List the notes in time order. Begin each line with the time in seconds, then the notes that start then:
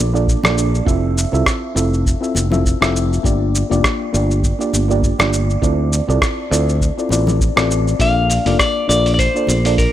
Already playing: A#1 D4 F4 A4 D5
0.13 A#3 D4 F4 A4 D5, shaker
0.27 kick, shaker
0.43 A#1 A#3 D4 F4 A4 D5, cross-stick, low conga, shaker
0.58 shaker
0.75 shaker
0.85 F1 C4 E4 F4 A4 E5, kick, shaker
1.18 shaker
1.32 C2 C4 E4 F4 A4 E5, shaker
1.46 kick, cross-stick, shaker
1.75 F1 C4 E4 F4 A4 E5, shaker
1.94 shaker
2.05 kick, shaker
2.21 C4 E4 F4 A4 E5, shaker
2.35 F1, high conga, shaker
2.50 C4 E4 F4 A4 E5, low conga, shaker
2.65 kick, shaker
2.81 F1 C4 E4 F4 A4 E5, cross-stick, shaker
2.96 shaker
3.13 shaker
3.23 G1 A#3 D4 F4 G4 D5, kick, shaker
3.55 shaker
3.70 F1 A#3 D4 F4 G4 D5, shaker
3.84 kick, cross-stick, shaker
4.13 G1 A#3 D4 F4 G4 D5, shaker
4.31 shaker
4.43 kick, shaker
4.59 A#3 D4 F4 G4 D5, shaker
4.73 G1, high conga, shaker
4.88 A#3 D4 F4 G4 D5, shaker
5.03 kick, shaker
5.19 G1 A#3 D4 F4 G4 D5, cross-stick, low conga, shaker
5.33 shaker
5.50 shaker
5.62 D2 C4 E4 F4 A4 D5, kick, shaker
5.93 shaker
6.07 C2 C4 E4 F4 A4 D5, shaker
6.21 kick, cross-stick, shaker
6.51 D2 C4 E4 F4 A4 D5, shaker
6.69 shaker
6.81 kick, shaker
6.98 C4 E4 F4 A4 D5, shaker
7.09 A1 C4 E4 F4 A4 D5, high conga, shaker
7.27 low conga, shaker
7.40 kick, shaker
7.56 A1 C4 E4 F4 A4 D5, cross-stick, shaker
7.71 shaker
7.88 shaker
7.99 A#1 A#3 D4 F4 A4 D5 F5, kick, open hi-hat, shaker
8.30 open hi-hat, shaker
8.45 F1 A#3 D4 F4 A4 D5, open hi-hat, shaker
8.59 D5, kick, cross-stick, open hi-hat, shaker
8.88 A#1 A#3 D4 F4 A4 D5, open hi-hat, shaker
9.06 open hi-hat, shaker
9.14 D5
9.19 C5, kick, open hi-hat, shaker
9.34 A#3 D4 F4 A4 D5, shaker
9.47 A#1, open hi-hat, high conga, shaker
9.64 A#3 D4 F4 A4 D5, open hi-hat, shaker
9.78 A#4, kick, open hi-hat, shaker